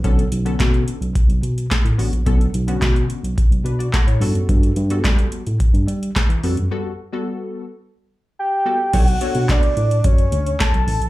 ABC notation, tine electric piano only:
X:1
M:4/4
L:1/16
Q:1/4=108
K:Bm
V:1 name="Tine electric piano" clef=bass
B,,,2 B,,,2 B,,2 z B,,, z B,,, B,,2 z A,, A,,, ^A,,, | B,,,2 B,,,2 B,,2 z B,,, z B,,, B,,2 z A,, G,, F,, | G,,2 G,,2 G,2 z A,, z G,, G,2 z E, ^E,, F,, | z16 |
B,,,2 z B,, z2 A,,2 F,,2 D,,2 z B,,, A,,, ^A,,, |]